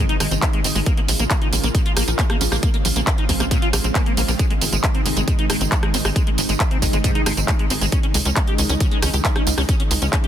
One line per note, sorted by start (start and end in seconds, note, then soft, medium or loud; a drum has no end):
0.00 0.14 C3 medium
0.00 0.14 D#3 loud
0.00 0.14 G#3 medium
0.00 0.14 D#4 medium
0.00 downlifter medium
0.09 0.16 D#4 loud
0.09 closed hi-hat soft
0.20 0.27 G#1 medium
0.20 0.28 C3 medium
0.20 0.28 D#3 medium
0.20 0.27 G#3 medium
0.20 0.28 G#3 medium
0.20 0.28 D#4 medium
0.20 cross-stick medium
0.20 open hi-hat loud
0.20 tambourine medium
0.31 0.38 G#1 medium
0.31 0.47 C3 medium
0.31 0.47 D#3 medium
0.31 0.47 G#3 medium
0.31 0.34 C4 medium
0.31 0.47 D#4 loud
0.31 closed hi-hat soft
0.31 tambourine soft
0.42 0.47 G#3 medium
0.42 kick loud
0.42 clap loud
0.42 closed hi-hat loud
0.42 tambourine soft
0.53 0.69 C3 medium
0.53 0.69 D#3 medium
0.53 0.69 G#3 medium
0.53 0.60 G#3 medium
0.53 0.69 D#4 medium
0.53 closed hi-hat soft
0.64 0.71 G#1 loud
0.64 0.67 C4 medium
0.64 open hi-hat loud
0.64 tambourine medium
0.75 0.82 G#1 medium
0.75 0.83 C3 medium
0.75 0.83 D#3 medium
0.75 0.80 G#3 loud
0.75 0.83 G#3 medium
0.75 0.83 D#4 medium
0.75 tambourine soft
0.86 0.93 A#3 medium
0.86 kick loud
0.86 closed hi-hat medium
0.86 tambourine soft
0.97 1.13 C#3 loud
0.97 1.13 G#3 loud
0.97 1.00 A#3 loud
0.97 1.13 A#3 medium
0.97 1.13 F4 loud
0.97 closed hi-hat soft
1.08 1.15 A#1 loud
1.08 1.11 F3 loud
1.08 open hi-hat loud
1.08 tambourine medium
1.19 1.26 A#1 medium
1.19 1.27 C#3 medium
1.19 1.27 G#3 loud
1.19 1.27 A#3 medium
1.19 1.24 A#3 medium
1.19 1.27 F4 loud
1.19 closed hi-hat soft
1.19 tambourine soft
1.30 1.46 C#3 medium
1.30 1.46 G#3 medium
1.30 1.35 A#3 medium
1.30 1.46 A#3 medium
1.30 1.46 F4 medium
1.30 kick loud
1.30 clap loud
1.30 closed hi-hat medium
1.30 tambourine soft
1.42 1.48 D#4 medium
1.42 closed hi-hat soft
1.52 1.59 A#1 medium
1.52 1.68 C#3 loud
1.52 1.68 G#3 medium
1.52 1.68 A#3 medium
1.52 1.55 A#3 medium
1.52 1.68 F4 medium
1.52 open hi-hat loud
1.52 tambourine medium
1.64 1.70 A#1 medium
1.64 1.68 A#3 loud
1.64 closed hi-hat soft
1.64 tambourine soft
1.75 1.81 A#2 medium
1.75 1.90 C#3 medium
1.75 1.90 G#3 loud
1.75 1.90 A#3 medium
1.75 1.90 F4 medium
1.75 kick loud
1.75 closed hi-hat medium
1.75 tambourine soft
1.86 1.92 F4 loud
1.86 closed hi-hat soft
1.97 2.03 A#1 medium
1.97 2.04 C#3 medium
1.97 2.04 G#3 medium
1.97 2.04 A#3 medium
1.97 2.03 A#3 medium
1.97 2.04 F4 medium
1.97 cross-stick medium
1.97 open hi-hat loud
1.97 tambourine medium
2.08 2.14 A#1 medium
2.08 2.23 C#3 medium
2.08 2.23 G#3 medium
2.08 2.23 A#3 loud
2.08 2.10 D#4 medium
2.08 2.23 F4 medium
2.08 closed hi-hat soft
2.08 tambourine soft
2.19 2.23 A#3 medium
2.19 kick loud
2.19 clap loud
2.19 closed hi-hat medium
2.19 tambourine soft
2.30 2.45 C#3 medium
2.30 2.45 G#3 medium
2.30 2.45 A#3 medium
2.30 2.36 A#3 medium
2.30 2.45 F4 medium
2.30 cross-stick medium
2.30 closed hi-hat soft
2.41 2.48 A#1 loud
2.41 2.43 C#4 medium
2.41 open hi-hat loud
2.41 tambourine medium
2.52 2.58 A#1 medium
2.52 2.60 C#3 medium
2.52 2.60 G#3 medium
2.52 2.60 A#3 medium
2.52 2.56 A#3 loud
2.52 2.60 F4 medium
2.52 cross-stick medium
2.52 tambourine soft
2.63 2.70 A#3 medium
2.63 kick loud
2.63 closed hi-hat medium
2.63 tambourine soft
2.74 2.89 C#3 loud
2.74 2.89 G#3 loud
2.74 2.77 A#3 loud
2.74 2.89 C4 medium
2.74 2.89 F4 medium
2.74 closed hi-hat soft
2.85 2.92 A#1 medium
2.85 2.88 F3 loud
2.85 open hi-hat loud
2.85 tambourine medium
2.96 3.03 A#1 medium
2.96 3.04 C#3 medium
2.96 3.04 G#3 medium
2.96 3.00 A#3 medium
2.96 3.04 C4 medium
2.96 3.04 F4 medium
2.96 closed hi-hat soft
2.96 tambourine soft
3.07 3.22 C#3 medium
3.07 3.22 G#3 medium
3.07 3.11 A#3 medium
3.07 3.22 C4 medium
3.07 3.22 F4 medium
3.07 kick loud
3.07 clap loud
3.07 closed hi-hat medium
3.07 tambourine soft
3.18 3.25 D#4 medium
3.18 closed hi-hat soft
3.29 3.36 A#1 loud
3.29 3.44 C#3 loud
3.29 3.44 G#3 medium
3.29 3.32 A#3 medium
3.29 3.44 C4 loud
3.29 3.44 F4 loud
3.29 kick medium
3.29 open hi-hat loud
3.29 tambourine medium
3.40 3.47 A#1 medium
3.40 3.45 A#3 loud
3.40 cross-stick medium
3.40 closed hi-hat soft
3.40 tambourine soft
3.51 3.58 A#2 medium
3.51 3.67 C#3 loud
3.51 3.67 G#3 medium
3.51 3.67 C4 medium
3.51 3.66 F4 medium
3.51 kick loud
3.51 closed hi-hat medium
3.51 tambourine soft
3.62 3.69 F4 loud
3.62 closed hi-hat soft
3.73 3.80 A#1 medium
3.73 3.81 C#3 medium
3.73 3.81 G#3 medium
3.73 3.76 A#3 medium
3.73 3.81 C4 medium
3.73 3.81 F4 medium
3.73 cross-stick medium
3.73 open hi-hat loud
3.73 tambourine medium
3.84 3.91 A#1 medium
3.84 4.00 C#3 medium
3.84 4.00 G#3 medium
3.84 3.87 C4 medium
3.84 4.00 C4 medium
3.84 4.00 F4 medium
3.84 closed hi-hat soft
3.84 tambourine soft
3.95 4.02 A#3 loud
3.95 kick loud
3.95 clap loud
3.95 closed hi-hat medium
3.95 tambourine soft
4.06 4.22 C#3 medium
4.06 4.22 G#3 medium
4.06 4.13 A#3 medium
4.06 4.22 C4 medium
4.06 4.22 F4 medium
4.06 closed hi-hat soft
4.17 4.24 A#1 loud
4.17 4.22 A#3 loud
4.17 open hi-hat loud
4.17 tambourine medium
4.28 4.35 A#1 medium
4.28 4.36 C#3 medium
4.28 4.36 G#3 medium
4.28 4.31 A#3 loud
4.28 4.36 C4 medium
4.28 4.36 F4 medium
4.28 tambourine soft
4.39 4.46 G#3 medium
4.39 kick loud
4.39 closed hi-hat medium
4.39 tambourine soft
4.50 4.66 C3 loud
4.50 4.66 D#3 medium
4.50 4.53 G#3 loud
4.50 4.66 G#3 medium
4.50 4.66 D#4 loud
4.50 closed hi-hat soft
4.61 4.68 G#1 loud
4.61 4.64 D#3 loud
4.61 open hi-hat loud
4.61 tambourine medium
4.72 4.79 G#1 medium
4.72 4.80 C3 medium
4.72 4.80 D#3 medium
4.72 4.80 G#3 medium
4.72 4.77 G#3 medium
4.72 4.80 D#4 loud
4.72 closed hi-hat soft
4.72 tambourine soft
4.83 4.99 C3 medium
4.83 4.99 D#3 medium
4.83 4.99 G#3 medium
4.83 4.88 G#3 medium
4.83 4.99 D#4 medium
4.83 kick loud
4.83 clap loud
4.83 closed hi-hat medium
4.83 tambourine soft
4.95 5.01 C4 medium
4.95 closed hi-hat soft
5.05 5.12 G#1 loud
5.05 5.21 C3 loud
5.05 5.21 D#3 medium
5.05 5.21 G#3 loud
5.05 5.08 G#3 medium
5.05 5.21 D#4 medium
5.05 open hi-hat medium
5.05 tambourine medium
5.17 5.23 G#1 medium
5.17 5.21 G#3 loud
5.17 closed hi-hat soft
5.17 tambourine soft
5.27 5.34 G#2 medium
5.27 5.43 C3 medium
5.27 5.43 D#3 loud
5.27 5.43 G#3 loud
5.27 5.43 D#4 medium
5.27 kick loud
5.27 closed hi-hat medium
5.27 tambourine soft
5.39 5.45 D#4 loud
5.39 closed hi-hat soft
5.49 5.56 G#1 loud
5.49 5.57 C3 medium
5.49 5.57 D#3 medium
5.49 5.57 G#3 medium
5.49 5.56 G#3 medium
5.49 5.57 D#4 medium
5.49 cross-stick medium
5.49 open hi-hat loud
5.49 tambourine medium
5.61 5.67 G#1 medium
5.61 5.76 C3 medium
5.61 5.76 D#3 medium
5.61 5.76 G#3 medium
5.61 5.63 C4 medium
5.61 5.76 D#4 medium
5.61 closed hi-hat soft
5.61 tambourine soft
5.72 5.76 G#3 medium
5.72 kick loud
5.72 clap loud
5.72 closed hi-hat medium
5.72 tambourine soft
5.83 5.98 C3 medium
5.83 5.98 D#3 medium
5.83 5.98 G#3 medium
5.83 5.89 G#3 medium
5.83 5.98 D#4 medium
5.83 cross-stick medium
5.83 closed hi-hat soft
5.94 6.00 G#1 loud
5.94 5.96 C4 medium
5.94 open hi-hat medium
5.94 tambourine medium
6.05 6.11 G#1 medium
6.05 6.12 C3 medium
6.05 6.12 D#3 medium
6.05 6.12 G#3 medium
6.05 6.09 G#3 loud
6.05 6.12 D#4 medium
6.05 cross-stick medium
6.05 tambourine soft
6.16 6.23 G#3 medium
6.16 kick loud
6.16 closed hi-hat medium
6.16 tambourine soft
6.27 6.42 C3 medium
6.27 6.42 D#3 loud
6.27 6.42 G#3 loud
6.27 6.30 G#3 loud
6.27 6.42 D#4 medium
6.27 closed hi-hat soft
6.38 6.45 G#1 medium
6.38 6.41 D#3 loud
6.38 open hi-hat loud
6.38 tambourine medium
6.49 6.56 G#1 medium
6.49 6.57 C3 medium
6.49 6.57 D#3 medium
6.49 6.57 G#3 medium
6.49 6.53 G#3 medium
6.49 6.57 D#4 loud
6.49 closed hi-hat soft
6.49 tambourine soft
6.60 6.75 C3 medium
6.60 6.75 D#3 medium
6.60 6.75 G#3 medium
6.60 6.64 G#3 medium
6.60 6.75 D#4 medium
6.60 kick loud
6.60 clap loud
6.60 closed hi-hat medium
6.60 tambourine soft
6.71 6.78 C4 medium
6.71 closed hi-hat soft
6.82 6.89 G#1 loud
6.82 6.98 C3 loud
6.82 6.97 D#3 loud
6.82 6.97 G#3 loud
6.82 6.85 G#3 medium
6.82 6.98 D#4 loud
6.82 kick medium
6.82 open hi-hat medium
6.82 tambourine medium
6.93 7.00 G#1 medium
6.93 6.98 G#3 loud
6.93 closed hi-hat soft
6.93 tambourine soft
7.04 7.11 G#2 medium
7.04 7.20 C3 medium
7.04 7.20 D#3 medium
7.04 7.20 G#3 medium
7.04 7.20 D#4 medium
7.04 kick loud
7.04 closed hi-hat loud
7.04 tambourine soft
7.15 7.22 D#4 loud
7.15 closed hi-hat soft
7.26 7.33 G#1 medium
7.26 7.34 C3 medium
7.26 7.34 D#3 medium
7.26 7.34 G#3 medium
7.26 7.33 G#3 medium
7.26 7.34 D#4 medium
7.26 cross-stick medium
7.26 open hi-hat loud
7.26 tambourine medium
7.37 7.44 G#1 medium
7.37 7.53 C3 medium
7.37 7.53 D#3 medium
7.37 7.53 G#3 medium
7.37 7.40 C4 medium
7.37 7.53 D#4 medium
7.37 closed hi-hat soft
7.37 tambourine soft
7.48 7.53 G#3 medium
7.48 kick loud
7.48 clap loud
7.48 closed hi-hat medium
7.48 tambourine soft
7.59 7.75 C3 medium
7.59 7.75 D#3 medium
7.59 7.66 G#3 medium
7.59 7.75 G#3 medium
7.59 7.75 D#4 medium
7.59 closed hi-hat soft
7.70 7.77 G#1 loud
7.70 7.73 C4 medium
7.70 open hi-hat medium
7.70 tambourine medium
7.81 7.88 G#1 medium
7.81 7.89 C3 medium
7.81 7.89 D#3 medium
7.81 7.89 G#3 medium
7.81 7.86 G#3 loud
7.81 7.89 D#4 medium
7.81 tambourine soft
7.92 7.99 C#4 medium
7.92 kick loud
7.92 closed hi-hat loud
7.92 tambourine soft
8.03 8.19 C#3 medium
8.03 8.19 D#3 medium
8.03 8.19 G#3 loud
8.03 8.06 C#4 loud
8.03 8.19 D#4 medium
8.03 closed hi-hat soft
8.14 8.21 C#2 medium
8.14 8.17 G#3 loud
8.14 open hi-hat loud
8.14 tambourine medium
8.25 8.32 C#2 medium
8.25 8.33 C#3 medium
8.25 8.33 D#3 medium
8.25 8.33 G#3 medium
8.25 8.30 C#4 medium
8.25 8.33 D#4 medium
8.25 closed hi-hat soft
8.25 tambourine soft
8.36 8.52 C#3 medium
8.36 8.52 D#3 medium
8.36 8.52 G#3 medium
8.36 8.41 C#4 medium
8.36 8.52 D#4 medium
8.36 kick loud
8.36 clap loud
8.36 closed hi-hat loud
8.36 tambourine soft
8.47 8.54 G4 medium
8.47 closed hi-hat soft
8.58 8.65 C#2 loud
8.58 8.74 C#3 loud
8.58 8.74 D#3 medium
8.58 8.74 G#3 loud
8.58 8.61 C#4 medium
8.58 8.74 D#4 loud
8.58 open hi-hat medium
8.58 tambourine medium
8.69 8.76 C#2 medium
8.69 8.74 C#4 loud
8.69 closed hi-hat soft
8.69 tambourine soft
8.80 8.87 C#3 medium
8.80 8.96 C#3 medium
8.80 8.96 D#3 loud
8.80 8.96 G#3 medium
8.80 8.96 D#4 loud
8.80 kick loud
8.80 closed hi-hat loud
8.80 tambourine soft
8.91 8.98 G#3 loud
8.91 closed hi-hat soft
9.02 9.09 C#2 loud
9.02 9.10 C#3 medium
9.02 9.10 D#3 medium
9.02 9.10 G#3 medium
9.02 9.09 C#4 medium
9.02 9.10 D#4 medium
9.02 cross-stick medium
9.02 open hi-hat loud
9.02 tambourine medium
9.14 9.20 C#2 medium
9.14 9.29 C#3 medium
9.14 9.29 D#3 medium
9.14 9.29 G#3 medium
9.14 9.29 D#4 medium
9.14 9.16 G4 medium
9.14 closed hi-hat soft
9.14 tambourine soft
9.25 9.29 C#4 medium
9.25 kick loud
9.25 clap loud
9.25 closed hi-hat loud
9.25 tambourine soft
9.36 9.51 C#3 medium
9.36 9.51 D#3 medium
9.36 9.51 G#3 medium
9.36 9.42 C#4 medium
9.36 9.51 D#4 medium
9.36 cross-stick medium
9.36 closed hi-hat soft
9.47 9.53 C#2 loud
9.47 9.49 F4 medium
9.47 open hi-hat medium
9.47 tambourine medium
9.58 9.64 C#2 medium
9.58 9.65 C#3 medium
9.58 9.65 D#3 medium
9.58 9.65 G#3 medium
9.58 9.62 C#4 loud
9.58 9.65 D#4 medium
9.58 cross-stick medium
9.58 tambourine soft
9.69 9.75 C#4 medium
9.69 kick loud
9.69 closed hi-hat loud
9.69 tambourine soft
9.80 9.95 C#3 loud
9.80 9.95 D#3 loud
9.80 9.95 G#3 medium
9.80 9.82 C#4 loud
9.80 9.95 D#4 loud
9.80 closed hi-hat soft
9.91 9.98 C#2 loud
9.91 9.93 G#3 loud
9.91 open hi-hat loud
9.91 tambourine medium
10.02 10.09 C#2 medium
10.02 10.10 C#3 medium
10.02 10.10 D#3 medium
10.02 10.10 G#3 medium
10.02 10.06 C#4 medium
10.02 10.10 D#4 medium
10.02 closed hi-hat soft
10.02 tambourine soft
10.13 10.28 C#3 medium
10.13 10.28 D#3 medium
10.13 10.28 G#3 medium
10.13 10.17 C#4 medium
10.13 10.28 D#4 medium
10.13 kick loud
10.13 clap loud
10.13 closed hi-hat loud
10.13 tambourine soft
10.24 10.28 G4 medium
10.24 closed hi-hat soft